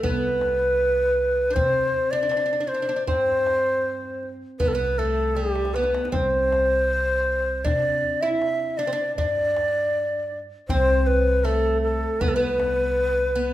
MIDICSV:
0, 0, Header, 1, 5, 480
1, 0, Start_track
1, 0, Tempo, 760456
1, 27, Time_signature, 4, 2, 24, 8
1, 8543, End_track
2, 0, Start_track
2, 0, Title_t, "Ney"
2, 0, Program_c, 0, 77
2, 7, Note_on_c, 0, 71, 89
2, 969, Note_on_c, 0, 72, 95
2, 979, Note_off_c, 0, 71, 0
2, 1330, Note_on_c, 0, 74, 90
2, 1340, Note_off_c, 0, 72, 0
2, 1688, Note_on_c, 0, 72, 78
2, 1698, Note_off_c, 0, 74, 0
2, 1933, Note_off_c, 0, 72, 0
2, 1937, Note_on_c, 0, 72, 91
2, 2708, Note_off_c, 0, 72, 0
2, 2898, Note_on_c, 0, 71, 92
2, 2952, Note_on_c, 0, 69, 75
2, 2961, Note_off_c, 0, 71, 0
2, 2989, Note_on_c, 0, 71, 93
2, 2998, Note_off_c, 0, 69, 0
2, 3144, Note_on_c, 0, 69, 81
2, 3154, Note_off_c, 0, 71, 0
2, 3380, Note_on_c, 0, 67, 78
2, 3390, Note_off_c, 0, 69, 0
2, 3622, Note_on_c, 0, 71, 75
2, 3631, Note_off_c, 0, 67, 0
2, 3862, Note_off_c, 0, 71, 0
2, 3866, Note_on_c, 0, 72, 101
2, 4824, Note_on_c, 0, 74, 93
2, 4833, Note_off_c, 0, 72, 0
2, 5182, Note_on_c, 0, 76, 99
2, 5192, Note_off_c, 0, 74, 0
2, 5537, Note_on_c, 0, 74, 82
2, 5546, Note_off_c, 0, 76, 0
2, 5778, Note_off_c, 0, 74, 0
2, 5782, Note_on_c, 0, 74, 100
2, 6551, Note_off_c, 0, 74, 0
2, 6742, Note_on_c, 0, 72, 101
2, 6983, Note_on_c, 0, 71, 85
2, 6992, Note_off_c, 0, 72, 0
2, 7221, Note_on_c, 0, 69, 86
2, 7231, Note_off_c, 0, 71, 0
2, 7458, Note_off_c, 0, 69, 0
2, 7461, Note_on_c, 0, 69, 81
2, 7702, Note_on_c, 0, 71, 89
2, 7711, Note_off_c, 0, 69, 0
2, 7752, Note_on_c, 0, 69, 76
2, 7762, Note_off_c, 0, 71, 0
2, 7791, Note_on_c, 0, 71, 95
2, 7800, Note_off_c, 0, 69, 0
2, 8543, Note_off_c, 0, 71, 0
2, 8543, End_track
3, 0, Start_track
3, 0, Title_t, "Oud"
3, 0, Program_c, 1, 24
3, 21, Note_on_c, 1, 59, 75
3, 950, Note_on_c, 1, 62, 57
3, 968, Note_off_c, 1, 59, 0
3, 981, Note_off_c, 1, 62, 0
3, 983, Note_on_c, 1, 60, 72
3, 1340, Note_off_c, 1, 60, 0
3, 1343, Note_on_c, 1, 62, 70
3, 1394, Note_off_c, 1, 62, 0
3, 1405, Note_on_c, 1, 62, 49
3, 1440, Note_off_c, 1, 62, 0
3, 1447, Note_on_c, 1, 62, 50
3, 1487, Note_off_c, 1, 62, 0
3, 1495, Note_on_c, 1, 62, 46
3, 1542, Note_off_c, 1, 62, 0
3, 1551, Note_on_c, 1, 62, 46
3, 1589, Note_off_c, 1, 62, 0
3, 1596, Note_on_c, 1, 62, 40
3, 1637, Note_off_c, 1, 62, 0
3, 1644, Note_on_c, 1, 62, 49
3, 1679, Note_off_c, 1, 62, 0
3, 1687, Note_on_c, 1, 62, 41
3, 1724, Note_off_c, 1, 62, 0
3, 1732, Note_on_c, 1, 62, 50
3, 1774, Note_off_c, 1, 62, 0
3, 1782, Note_on_c, 1, 62, 45
3, 1815, Note_off_c, 1, 62, 0
3, 1823, Note_on_c, 1, 62, 57
3, 1863, Note_off_c, 1, 62, 0
3, 1871, Note_on_c, 1, 62, 50
3, 1919, Note_off_c, 1, 62, 0
3, 1940, Note_on_c, 1, 60, 68
3, 2710, Note_off_c, 1, 60, 0
3, 2902, Note_on_c, 1, 59, 67
3, 2989, Note_off_c, 1, 59, 0
3, 2996, Note_on_c, 1, 59, 66
3, 3147, Note_off_c, 1, 59, 0
3, 3149, Note_on_c, 1, 57, 68
3, 3384, Note_off_c, 1, 57, 0
3, 3387, Note_on_c, 1, 55, 63
3, 3631, Note_off_c, 1, 55, 0
3, 3633, Note_on_c, 1, 59, 65
3, 3864, Note_on_c, 1, 60, 74
3, 3879, Note_off_c, 1, 59, 0
3, 4823, Note_off_c, 1, 60, 0
3, 4826, Note_on_c, 1, 62, 77
3, 5189, Note_off_c, 1, 62, 0
3, 5192, Note_on_c, 1, 64, 72
3, 5545, Note_off_c, 1, 64, 0
3, 5547, Note_on_c, 1, 62, 78
3, 5595, Note_off_c, 1, 62, 0
3, 5601, Note_on_c, 1, 60, 61
3, 5632, Note_off_c, 1, 60, 0
3, 5634, Note_on_c, 1, 62, 74
3, 5788, Note_off_c, 1, 62, 0
3, 5795, Note_on_c, 1, 62, 76
3, 6557, Note_off_c, 1, 62, 0
3, 6754, Note_on_c, 1, 60, 77
3, 7224, Note_on_c, 1, 57, 68
3, 7247, Note_off_c, 1, 60, 0
3, 7704, Note_off_c, 1, 57, 0
3, 7707, Note_on_c, 1, 59, 73
3, 7793, Note_off_c, 1, 59, 0
3, 7801, Note_on_c, 1, 59, 77
3, 8422, Note_off_c, 1, 59, 0
3, 8429, Note_on_c, 1, 59, 74
3, 8543, Note_off_c, 1, 59, 0
3, 8543, End_track
4, 0, Start_track
4, 0, Title_t, "Upright bass"
4, 0, Program_c, 2, 32
4, 21, Note_on_c, 2, 36, 82
4, 986, Note_on_c, 2, 48, 78
4, 996, Note_off_c, 2, 36, 0
4, 1945, Note_off_c, 2, 48, 0
4, 1945, Note_on_c, 2, 43, 91
4, 2793, Note_off_c, 2, 43, 0
4, 2905, Note_on_c, 2, 36, 75
4, 3753, Note_off_c, 2, 36, 0
4, 3867, Note_on_c, 2, 36, 82
4, 4829, Note_on_c, 2, 48, 79
4, 4838, Note_off_c, 2, 36, 0
4, 5788, Note_off_c, 2, 48, 0
4, 5788, Note_on_c, 2, 43, 96
4, 6635, Note_off_c, 2, 43, 0
4, 6750, Note_on_c, 2, 36, 83
4, 7596, Note_off_c, 2, 36, 0
4, 7706, Note_on_c, 2, 36, 86
4, 8543, Note_off_c, 2, 36, 0
4, 8543, End_track
5, 0, Start_track
5, 0, Title_t, "Tombak"
5, 25, Note_on_c, 9, 64, 73
5, 89, Note_off_c, 9, 64, 0
5, 147, Note_on_c, 9, 62, 22
5, 210, Note_off_c, 9, 62, 0
5, 261, Note_on_c, 9, 63, 63
5, 324, Note_off_c, 9, 63, 0
5, 382, Note_on_c, 9, 62, 26
5, 445, Note_off_c, 9, 62, 0
5, 744, Note_on_c, 9, 62, 26
5, 807, Note_off_c, 9, 62, 0
5, 983, Note_on_c, 9, 64, 85
5, 1046, Note_off_c, 9, 64, 0
5, 1345, Note_on_c, 9, 62, 25
5, 1408, Note_off_c, 9, 62, 0
5, 1461, Note_on_c, 9, 63, 70
5, 1524, Note_off_c, 9, 63, 0
5, 1944, Note_on_c, 9, 64, 82
5, 2007, Note_off_c, 9, 64, 0
5, 2071, Note_on_c, 9, 62, 24
5, 2134, Note_off_c, 9, 62, 0
5, 2187, Note_on_c, 9, 63, 66
5, 2250, Note_off_c, 9, 63, 0
5, 2548, Note_on_c, 9, 62, 22
5, 2611, Note_off_c, 9, 62, 0
5, 2669, Note_on_c, 9, 62, 28
5, 2732, Note_off_c, 9, 62, 0
5, 2905, Note_on_c, 9, 64, 90
5, 2968, Note_off_c, 9, 64, 0
5, 3030, Note_on_c, 9, 62, 24
5, 3093, Note_off_c, 9, 62, 0
5, 3146, Note_on_c, 9, 62, 25
5, 3210, Note_off_c, 9, 62, 0
5, 3263, Note_on_c, 9, 62, 27
5, 3326, Note_off_c, 9, 62, 0
5, 3383, Note_on_c, 9, 63, 48
5, 3440, Note_on_c, 9, 62, 55
5, 3446, Note_off_c, 9, 63, 0
5, 3503, Note_off_c, 9, 62, 0
5, 3506, Note_on_c, 9, 63, 60
5, 3566, Note_on_c, 9, 62, 65
5, 3569, Note_off_c, 9, 63, 0
5, 3626, Note_on_c, 9, 63, 66
5, 3630, Note_off_c, 9, 62, 0
5, 3684, Note_on_c, 9, 62, 72
5, 3689, Note_off_c, 9, 63, 0
5, 3747, Note_off_c, 9, 62, 0
5, 3752, Note_on_c, 9, 63, 73
5, 3816, Note_off_c, 9, 63, 0
5, 3819, Note_on_c, 9, 62, 80
5, 3875, Note_on_c, 9, 64, 85
5, 3882, Note_off_c, 9, 62, 0
5, 3938, Note_off_c, 9, 64, 0
5, 3991, Note_on_c, 9, 62, 26
5, 4054, Note_off_c, 9, 62, 0
5, 4118, Note_on_c, 9, 63, 65
5, 4181, Note_off_c, 9, 63, 0
5, 4239, Note_on_c, 9, 62, 28
5, 4303, Note_off_c, 9, 62, 0
5, 4598, Note_on_c, 9, 62, 28
5, 4661, Note_off_c, 9, 62, 0
5, 4840, Note_on_c, 9, 64, 89
5, 4903, Note_off_c, 9, 64, 0
5, 5198, Note_on_c, 9, 62, 26
5, 5261, Note_off_c, 9, 62, 0
5, 5313, Note_on_c, 9, 63, 61
5, 5376, Note_off_c, 9, 63, 0
5, 5795, Note_on_c, 9, 64, 72
5, 5858, Note_off_c, 9, 64, 0
5, 5918, Note_on_c, 9, 62, 25
5, 5981, Note_off_c, 9, 62, 0
5, 6037, Note_on_c, 9, 63, 67
5, 6100, Note_off_c, 9, 63, 0
5, 6155, Note_on_c, 9, 62, 23
5, 6218, Note_off_c, 9, 62, 0
5, 6514, Note_on_c, 9, 62, 24
5, 6577, Note_off_c, 9, 62, 0
5, 6749, Note_on_c, 9, 64, 91
5, 6812, Note_off_c, 9, 64, 0
5, 7228, Note_on_c, 9, 63, 65
5, 7291, Note_off_c, 9, 63, 0
5, 7708, Note_on_c, 9, 64, 87
5, 7771, Note_off_c, 9, 64, 0
5, 7833, Note_on_c, 9, 62, 22
5, 7896, Note_off_c, 9, 62, 0
5, 7950, Note_on_c, 9, 63, 67
5, 8014, Note_off_c, 9, 63, 0
5, 8069, Note_on_c, 9, 62, 25
5, 8133, Note_off_c, 9, 62, 0
5, 8432, Note_on_c, 9, 62, 27
5, 8495, Note_off_c, 9, 62, 0
5, 8543, End_track
0, 0, End_of_file